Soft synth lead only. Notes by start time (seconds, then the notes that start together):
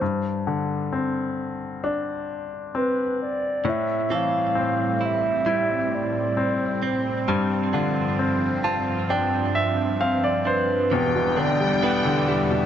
Already playing: C5
2.77 B4
3.22 D5
3.69 E5
4.15 F5
5.05 E5
5.95 D5
6.87 C5
10.48 B4
11.38 D5